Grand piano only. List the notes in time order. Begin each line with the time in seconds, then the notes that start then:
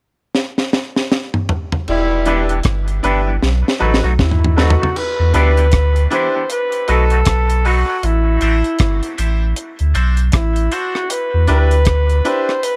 2.26 D4 E4 G4 B4
3.03 D4 E4 G4 B4
3.79 D#4 F#4 A4 B4
4.56 D#4 F#4 A4 B4
5.33 D4 E4 G4 B4
6.10 D4 E4 G4 B4
6.88 D#4 F#4 A4 B4
7.65 D#4 F#4 A4 B4
8.41 E4 G4 A4 C5
9.17 E4 G4 A4 C5
9.94 D4 F#4 A4 C5
10.71 D4 F#4 A4 C5
11.47 D4 E4 G4 B4
12.25 D4 E4 G4 B4